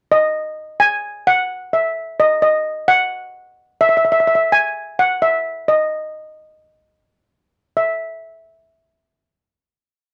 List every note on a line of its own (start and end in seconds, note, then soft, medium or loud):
0.12 0.76 D#5 medium
0.80 1.28 G#5 loud
1.27 1.74 F#5 loud
1.73 2.20 E5 medium
2.20 2.41 D#5 medium
2.42 2.85 D#5 medium
2.88 3.84 F#5 medium
3.81 3.88 E5 medium
3.89 3.96 E5 medium
3.97 4.04 E5 medium
4.05 4.11 E5 medium
4.12 4.19 E5 medium
4.20 4.26 E5 medium
4.27 4.34 E5 medium
4.35 4.42 E5 medium
4.52 4.99 G#5 medium
4.99 5.22 F#5 medium
5.22 5.69 E5 medium
5.68 7.50 D#5 medium
7.77 7.98 E5 medium